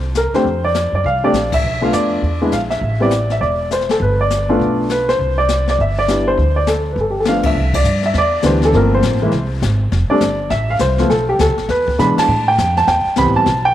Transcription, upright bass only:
Already playing: C2
0.33 muted upright bass stroke
0.44 F2
0.92 F#2
1.04 C2
1.33 A#1
1.63 B1
1.92 F2
2.22 E2
2.52 A#1
2.81 A1
3.41 E1
4.00 G1
4.60 B1
5.19 C2
5.78 G1
6.37 D2
6.96 G1
7.44 B1
7.55 C2
7.84 G2
8.14 E2
8.44 D2
8.73 G1
9.02 A1
9.32 C2
9.62 G#1
9.92 F1
10.10 muted upright bass stroke
10.21 G1
10.50 A1
10.80 C2
11.10 B1
11.39 D2
11.48 B1
11.59 A1
11.68 E2
11.99 B2
12.17 muted upright bass stroke
12.28 A2
12.58 F2
12.87 E2
13.06 muted upright bass stroke
13.17 C2
13.26 A1
13.36 G1
13.46 B1

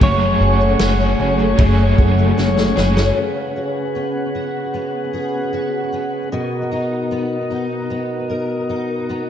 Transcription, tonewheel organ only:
Already playing: G#5 C#6
0.01 A3 F#5
3.17 C#4 G#4 B4 F#5
6.32 B3 F#4 A#4 D#5

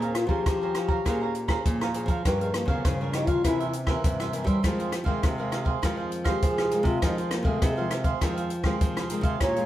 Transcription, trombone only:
0.02 C4
0.15 F4
0.29 G4
2.26 G3
2.41 G#3
2.53 A#3
2.68 B3
2.85 C4
3.01 C#4
3.13 D#4
3.27 F4
3.45 E4
6.26 G4
6.43 G#4
6.86 F4
7.03 D#4
7.18 C4
7.31 A#3
7.46 A3
7.62 G#3
7.77 F3
9.40 F4

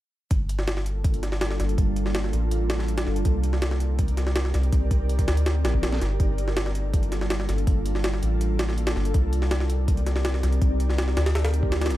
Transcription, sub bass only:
0.31 G1
1.60 G1
1.78 G1
2.33 A1
3.07 G1
3.25 C2
4.54 C2
4.73 C2
5.28 D2
5.64 A#1
6.01 G1
6.20 G1
7.49 G1
7.67 G1
8.22 A1
8.96 G1
9.14 C2
10.43 C2
10.62 C2
11.17 D2
11.90 G1

